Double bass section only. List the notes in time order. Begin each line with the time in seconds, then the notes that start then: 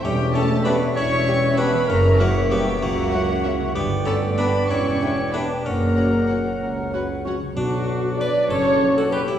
0.04 E1
0.97 E1
1.89 F#1
2.82 C#2
3.75 G1
4.69 E1
5.65 F#1
6.62 C#2
7.57 B1
8.51 F#1